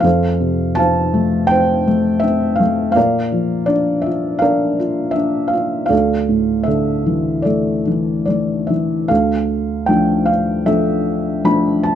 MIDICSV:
0, 0, Header, 1, 2, 480
1, 0, Start_track
1, 0, Key_signature, -1, "minor"
1, 0, Tempo, 735294
1, 26, Time_signature, 4, 2, 24, 8
1, 3865, Tempo, 771208
1, 4825, Tempo, 818554
1, 5785, Tempo, 776197
1, 7547, End_track
2, 0, Start_track
2, 0, Title_t, "Felt piano"
2, 0, Program_c, 0, 0
2, 0, Control_c, 0, 64, 127
2, 2, Note_on_c, 0, 77, 69
2, 21, Note_on_c, 0, 41, 49
2, 28, Note_on_c, 0, 69, 55
2, 29, Note_on_c, 0, 72, 56
2, 35, Control_c, 0, 64, 0
2, 137, Control_c, 0, 64, 127
2, 266, Note_on_c, 0, 48, 41
2, 490, Note_on_c, 0, 81, 87
2, 505, Note_off_c, 0, 77, 0
2, 505, Note_on_c, 0, 53, 47
2, 510, Note_off_c, 0, 72, 0
2, 515, Note_on_c, 0, 77, 61
2, 520, Note_on_c, 0, 72, 58
2, 742, Note_on_c, 0, 57, 52
2, 956, Note_off_c, 0, 69, 0
2, 960, Note_on_c, 0, 79, 90
2, 975, Note_off_c, 0, 72, 0
2, 983, Note_on_c, 0, 60, 49
2, 985, Note_on_c, 0, 72, 64
2, 986, Note_off_c, 0, 81, 0
2, 1191, Note_off_c, 0, 48, 0
2, 1213, Note_off_c, 0, 57, 0
2, 1223, Note_on_c, 0, 57, 52
2, 1431, Note_off_c, 0, 53, 0
2, 1433, Note_on_c, 0, 76, 84
2, 1436, Note_off_c, 0, 77, 0
2, 1451, Note_off_c, 0, 60, 0
2, 1461, Note_on_c, 0, 60, 56
2, 1463, Note_off_c, 0, 79, 0
2, 1668, Note_on_c, 0, 77, 72
2, 1689, Note_off_c, 0, 57, 0
2, 1693, Note_off_c, 0, 76, 0
2, 1699, Note_on_c, 0, 57, 53
2, 1896, Note_off_c, 0, 77, 0
2, 1905, Note_on_c, 0, 77, 81
2, 1908, Note_off_c, 0, 41, 0
2, 1912, Note_off_c, 0, 72, 0
2, 1923, Note_off_c, 0, 60, 0
2, 1926, Note_on_c, 0, 46, 54
2, 1930, Note_off_c, 0, 57, 0
2, 1932, Note_on_c, 0, 74, 65
2, 1938, Note_on_c, 0, 70, 61
2, 1943, Control_c, 0, 64, 0
2, 2067, Control_c, 0, 64, 127
2, 2167, Note_on_c, 0, 53, 44
2, 2379, Note_off_c, 0, 74, 0
2, 2389, Note_on_c, 0, 74, 78
2, 2399, Note_on_c, 0, 62, 47
2, 2413, Note_off_c, 0, 77, 0
2, 2622, Note_on_c, 0, 76, 64
2, 2650, Note_off_c, 0, 74, 0
2, 2651, Note_on_c, 0, 65, 48
2, 2863, Note_on_c, 0, 77, 77
2, 2870, Note_off_c, 0, 70, 0
2, 2875, Note_off_c, 0, 62, 0
2, 2884, Note_on_c, 0, 70, 60
2, 2885, Note_on_c, 0, 62, 46
2, 2887, Note_off_c, 0, 76, 0
2, 2888, Note_on_c, 0, 74, 54
2, 3106, Note_off_c, 0, 53, 0
2, 3120, Note_off_c, 0, 65, 0
2, 3130, Note_on_c, 0, 65, 47
2, 3333, Note_off_c, 0, 77, 0
2, 3337, Note_on_c, 0, 76, 76
2, 3357, Note_off_c, 0, 62, 0
2, 3367, Note_on_c, 0, 62, 46
2, 3575, Note_on_c, 0, 77, 62
2, 3603, Note_off_c, 0, 65, 0
2, 3605, Note_off_c, 0, 76, 0
2, 3612, Note_on_c, 0, 65, 50
2, 3815, Note_off_c, 0, 77, 0
2, 3824, Note_on_c, 0, 77, 73
2, 3834, Note_off_c, 0, 46, 0
2, 3834, Note_off_c, 0, 70, 0
2, 3835, Note_off_c, 0, 74, 0
2, 3845, Note_on_c, 0, 74, 49
2, 3847, Note_off_c, 0, 62, 0
2, 3849, Note_on_c, 0, 69, 51
2, 3851, Note_on_c, 0, 38, 50
2, 3856, Note_off_c, 0, 65, 0
2, 3874, Control_c, 0, 64, 0
2, 3986, Control_c, 0, 64, 127
2, 4094, Note_on_c, 0, 45, 38
2, 4309, Note_on_c, 0, 76, 66
2, 4317, Note_off_c, 0, 69, 0
2, 4326, Note_on_c, 0, 69, 44
2, 4335, Note_on_c, 0, 50, 38
2, 4338, Note_off_c, 0, 77, 0
2, 4576, Note_on_c, 0, 52, 45
2, 4791, Note_off_c, 0, 74, 0
2, 4800, Note_on_c, 0, 74, 57
2, 4807, Note_off_c, 0, 69, 0
2, 4816, Note_on_c, 0, 69, 45
2, 4821, Note_on_c, 0, 57, 41
2, 4824, Note_off_c, 0, 76, 0
2, 5033, Note_off_c, 0, 45, 0
2, 5057, Note_off_c, 0, 52, 0
2, 5066, Note_on_c, 0, 52, 36
2, 5279, Note_off_c, 0, 50, 0
2, 5281, Note_off_c, 0, 74, 0
2, 5290, Note_on_c, 0, 74, 55
2, 5294, Note_off_c, 0, 57, 0
2, 5303, Note_on_c, 0, 57, 38
2, 5532, Note_on_c, 0, 76, 50
2, 5543, Note_off_c, 0, 52, 0
2, 5549, Note_off_c, 0, 74, 0
2, 5551, Note_on_c, 0, 52, 36
2, 5755, Note_off_c, 0, 38, 0
2, 5757, Note_off_c, 0, 69, 0
2, 5769, Note_off_c, 0, 57, 0
2, 5775, Note_on_c, 0, 77, 71
2, 5779, Note_off_c, 0, 52, 0
2, 5780, Note_on_c, 0, 69, 49
2, 5783, Note_off_c, 0, 76, 0
2, 5790, Note_on_c, 0, 38, 50
2, 5794, Control_c, 0, 64, 0
2, 5908, Control_c, 0, 64, 127
2, 6257, Note_on_c, 0, 79, 78
2, 6269, Note_on_c, 0, 53, 39
2, 6273, Note_on_c, 0, 57, 39
2, 6275, Note_on_c, 0, 62, 43
2, 6277, Note_off_c, 0, 77, 0
2, 6499, Note_on_c, 0, 77, 70
2, 6510, Note_off_c, 0, 79, 0
2, 6724, Note_off_c, 0, 69, 0
2, 6737, Note_off_c, 0, 53, 0
2, 6739, Note_off_c, 0, 57, 0
2, 6741, Note_off_c, 0, 62, 0
2, 6748, Note_on_c, 0, 53, 37
2, 6750, Note_on_c, 0, 76, 81
2, 6751, Note_on_c, 0, 69, 59
2, 6752, Note_on_c, 0, 57, 40
2, 6753, Note_on_c, 0, 62, 45
2, 6755, Note_off_c, 0, 77, 0
2, 7219, Note_off_c, 0, 53, 0
2, 7221, Note_off_c, 0, 57, 0
2, 7221, Note_off_c, 0, 62, 0
2, 7233, Note_on_c, 0, 53, 39
2, 7234, Note_on_c, 0, 57, 38
2, 7238, Note_on_c, 0, 62, 45
2, 7238, Note_on_c, 0, 83, 75
2, 7249, Note_off_c, 0, 76, 0
2, 7455, Note_off_c, 0, 83, 0
2, 7476, Note_on_c, 0, 81, 71
2, 7547, Note_off_c, 0, 38, 0
2, 7547, Note_off_c, 0, 53, 0
2, 7547, Note_off_c, 0, 57, 0
2, 7547, Note_off_c, 0, 62, 0
2, 7547, Note_off_c, 0, 69, 0
2, 7547, Note_off_c, 0, 81, 0
2, 7547, End_track
0, 0, End_of_file